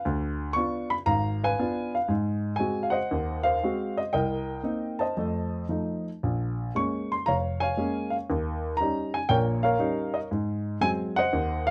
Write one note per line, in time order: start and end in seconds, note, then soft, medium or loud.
0.05 0.50 D2 medium
0.53 0.94 B3 soft
0.53 0.94 D4 soft
0.53 0.94 F4 medium
0.53 0.88 C#6 medium
0.90 0.95 B5 medium
1.06 1.52 G#1 medium
1.06 1.42 F5 medium
1.06 1.40 A#5 medium
1.44 2.06 B4 medium
1.44 1.93 F5 medium
1.44 1.91 G#5 medium
1.59 1.96 B3 medium
1.59 1.96 D4 soft
1.59 1.96 F4 medium
1.95 2.09 F5 medium
2.08 2.53 G#2 medium
2.56 2.97 G#3 soft
2.56 2.97 C4 soft
2.56 2.85 G#5 medium
2.60 2.97 F#4 medium
2.83 2.94 F5 medium
2.90 3.43 C5 medium
2.90 3.92 D#5 medium
2.90 3.40 F#5 medium
3.11 3.56 D#2 medium
3.43 4.08 C5 medium
3.43 3.98 F5 medium
3.63 4.00 G#3 medium
3.63 4.00 C4 soft
3.63 4.00 F#4 medium
3.97 4.12 D#5 medium
4.13 4.58 C2 medium
4.13 5.13 A#4 medium
4.13 4.99 D#5 medium
4.13 5.03 G5 medium
4.63 5.02 A#3 soft
4.63 5.02 C4 soft
4.63 5.02 D#4 soft
4.99 6.03 C5 medium
4.99 6.03 D#5 medium
4.99 5.65 A5 medium
5.17 5.63 F2 medium
5.17 5.64 A3 medium
5.69 6.08 F3 soft
5.69 6.09 A3 soft
5.69 6.09 D#4 soft
6.23 6.69 A#1 medium
6.75 7.13 G#3 soft
6.75 7.14 A#3 soft
6.75 7.14 C#4 soft
6.75 7.10 C#6 medium
7.12 7.28 C6 medium
7.26 7.72 F1 medium
7.26 7.60 C#5 medium
7.26 7.61 F5 medium
7.26 7.34 A#5 medium
7.60 8.25 C#5 medium
7.60 8.09 F5 medium
7.60 8.14 G#5 medium
7.77 8.15 G#3 soft
7.77 8.15 A#3 soft
7.77 8.16 C#4 medium
8.10 8.15 F5 medium
8.30 8.74 D#2 medium
8.77 9.17 G3 soft
8.77 9.17 C#4 soft
8.77 9.17 D#4 medium
8.77 9.15 A#5 medium
9.14 9.29 G#5 medium
9.29 9.74 A#1 medium
9.29 9.74 A#2 medium
9.29 9.63 A#4 medium
9.29 9.63 C#5 medium
9.29 9.37 G5 medium
9.63 10.27 A#4 medium
9.63 10.27 C#5 medium
9.63 10.16 F5 medium
9.79 10.16 G3 soft
9.79 10.16 C#4 soft
9.79 10.17 D#4 medium
10.14 10.19 D#5 medium
10.31 10.76 G#2 medium
10.81 11.19 F#3 soft
10.81 11.19 G#3 soft
10.81 11.19 C4 medium
10.81 10.90 G#5 medium
11.16 11.68 C5 medium
11.16 11.71 D#5 medium
11.16 11.70 F#5 medium
11.33 11.71 D#2 medium
11.67 11.71 F5 loud